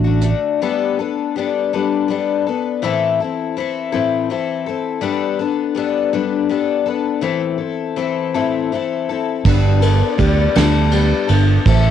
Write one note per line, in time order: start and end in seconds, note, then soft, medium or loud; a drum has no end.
0.00 0.32 A1 medium
0.04 0.22 A3 soft
0.04 0.22 D4 medium
0.04 0.22 F#4 medium
0.21 0.59 D3 medium
0.21 0.60 A3 medium
0.21 0.60 D4 medium
0.21 0.60 F#4 medium
0.21 closed hi-hat medium
0.62 0.97 G3 medium
0.62 0.98 B3 medium
0.62 0.98 D4 medium
0.62 0.98 A4 medium
0.99 1.36 B3 medium
0.99 1.35 D4 medium
0.99 1.35 A4 medium
1.36 1.71 G3 medium
1.36 1.72 B3 medium
1.36 1.73 D4 medium
1.36 1.72 A4 medium
1.73 2.07 G3 medium
1.73 2.08 B3 medium
1.73 2.09 D4 medium
1.73 2.09 A4 medium
2.08 2.45 G3 medium
2.08 2.45 B3 medium
2.08 2.46 D4 medium
2.08 2.45 A4 medium
2.46 2.83 B3 medium
2.46 2.83 D4 medium
2.46 2.82 A4 medium
2.82 3.18 A2 medium
2.82 3.19 E3 medium
2.82 3.19 C4 medium
2.82 3.19 E4 loud
2.82 3.19 A4 loud
3.20 3.56 C4 medium
3.20 3.57 E4 medium
3.20 3.56 A4 medium
3.56 3.93 E3 medium
3.56 3.92 C4 medium
3.56 3.91 E4 medium
3.56 3.91 A4 medium
3.92 4.30 A2 medium
3.92 4.29 E3 medium
3.92 4.30 C4 medium
3.92 4.29 E4 medium
3.92 4.29 A4 medium
4.30 4.66 E3 medium
4.30 4.67 C4 medium
4.30 4.67 E4 medium
4.30 4.65 A4 medium
4.66 5.02 C4 soft
4.66 5.03 E4 medium
4.66 5.03 A4 medium
5.01 5.39 G3 loud
5.01 5.39 B3 loud
5.01 5.40 D4 loud
5.01 5.38 A4 loud
5.39 5.75 B3 medium
5.39 5.76 D4 medium
5.39 5.76 A4 medium
5.75 6.12 G3 medium
5.75 6.13 B3 medium
5.75 6.12 D4 medium
5.75 6.12 A4 medium
6.13 6.48 G3 medium
6.13 6.49 B3 medium
6.13 6.50 D4 medium
6.13 6.50 A4 medium
6.49 6.87 G3 medium
6.49 6.87 B3 medium
6.49 6.86 D4 medium
6.49 6.85 A4 medium
6.86 7.22 B3 medium
6.86 7.22 D4 medium
6.86 7.23 A4 medium
7.21 7.59 A2 medium
7.21 7.60 E3 loud
7.21 7.59 C4 medium
7.21 7.58 E4 loud
7.21 7.57 A4 medium
7.58 7.96 C4 medium
7.58 7.97 E4 medium
7.58 7.96 A4 medium
7.96 8.34 E3 medium
7.96 8.34 C4 medium
7.96 8.34 E4 medium
7.96 8.33 A4 medium
8.34 8.72 A2 medium
8.34 8.71 E3 medium
8.34 8.72 C4 medium
8.34 8.72 E4 medium
8.34 8.71 A4 medium
8.72 9.08 E3 medium
8.72 9.09 C4 medium
8.72 9.09 E4 medium
8.72 9.08 A4 medium
9.09 9.46 C4 medium
9.09 9.46 E4 medium
9.09 9.45 A4 medium
9.45 10.01 G1 loud
9.45 9.82 G3 medium
9.45 9.82 B3 medium
9.45 9.80 D4 medium
9.45 9.79 A4 loud
9.45 kick loud
9.45 crash loud
9.80 10.17 B3 medium
9.80 10.18 D4 medium
9.80 10.18 A4 medium
9.80 ride medium
10.18 10.46 D2 medium
10.18 10.55 G3 medium
10.18 10.55 B3 medium
10.18 10.56 D4 medium
10.18 10.55 A4 medium
10.18 kick medium
10.18 ride medium
10.55 11.12 D2 loud
10.55 10.91 G3 medium
10.55 10.91 B3 medium
10.55 10.92 D4 medium
10.55 10.92 A4 medium
10.55 snare loud
10.55 ride loud
10.91 11.29 G3 medium
10.91 11.29 B3 medium
10.91 11.28 D4 medium
10.91 11.26 A4 medium
10.91 ride medium
11.27 11.57 G1 loud
11.27 11.66 B3 medium
11.27 11.66 D4 medium
11.27 11.65 A4 medium
11.27 ride medium
11.65 11.91 A1 loud
11.65 11.91 A2 medium
11.65 11.91 E3 medium
11.65 11.91 C4 medium
11.65 11.91 E4 loud
11.65 11.91 A4 loud
11.65 kick loud
11.65 ride loud